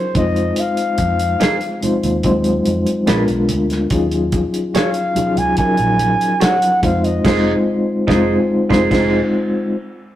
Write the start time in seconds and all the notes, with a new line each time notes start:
Already playing: F#3 C#4 D#4 F4 A#4 C5
0.14 F2 G#3 C4 D#4 F4 C5 D#5, kick, closed hi-hat, low conga
0.36 closed hi-hat
0.56 F5, closed hi-hat, muted conga
0.77 closed hi-hat
0.98 F2, kick, closed hi-hat, muted conga, high conga
1.19 closed hi-hat
1.40 D#4 G#4 C5, snare, closed hi-hat, muted conga, high conga
1.61 closed hi-hat
1.81 G#3 C4 D#4 F4 C5, muted fingered electric bass stroke, closed hi-hat, high conga, low conga
2.03 D#2, closed hi-hat, low conga
2.23 D#2 F#3 C4 D#4 F4 C5, kick, closed hi-hat
2.30 G#3
2.44 closed hi-hat
2.66 F2, closed hi-hat, high conga
2.86 closed hi-hat
3.06 A#1 G#3 B3 D4 F4 G#4 A#4 B4, snare, closed hi-hat, muted conga, high conga
3.28 B1, closed hi-hat
3.49 D2, closed hi-hat, muted conga, low conga
3.70 snare, closed hi-hat
3.90 D#2 F#3 C#4 D#4 F4 G#4, kick, closed hi-hat, muted conga
4.11 closed hi-hat
4.32 kick, closed hi-hat, high conga
4.54 closed hi-hat
4.74 F#4 G#4 C#5 F5, snare, closed hi-hat, high conga
4.94 closed hi-hat
5.15 F#3 C#4 D#4 F4 G#4, muted fingered electric bass stroke, closed hi-hat, muted conga, high conga, low conga
5.36 C#2 G#5, closed hi-hat, low conga
5.57 F3 F#3 C#4 D#4 A#4 G#5, muted fingered electric bass stroke, kick, closed hi-hat, muted conga
5.77 A#1, closed hi-hat
5.98 closed hi-hat, high conga
6.21 closed hi-hat
6.40 F#4 G#4 C#5 F#5, snare, closed hi-hat, muted conga, high conga
6.62 closed hi-hat
6.82 F2 G#3 C4 D#4 F4 C5 F5, kick, closed hi-hat, low conga
7.04 D#5, closed hi-hat
7.25 F1 G#3 C4 D#4 F4 G#4 C5, kick, snare, crash
8.07 F1 G#3 C4 D#4 F4 G#4 C5, kick, snare
8.69 F1 G#3 C4 D#4 F4 G#4 C5, kick, snare
8.91 F1 D#4 G#4 C5, kick, snare, crash